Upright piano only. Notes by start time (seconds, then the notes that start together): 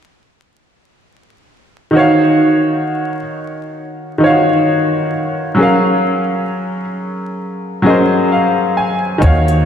1.91 D#3 D#4 F#4
1.97 C#5 F5
4.18 D#3 D#4 F4
4.24 C#5 F5
4.29 F#4
5.55 F#3 C#4 G#4
5.60 A#4 F5
7.82 F#3 C#4 G#4
7.86 A#4 C5 D#5
8.32 F5
8.77 G#5
9.18 D#3 D#4 F#4
9.24 C#5 F5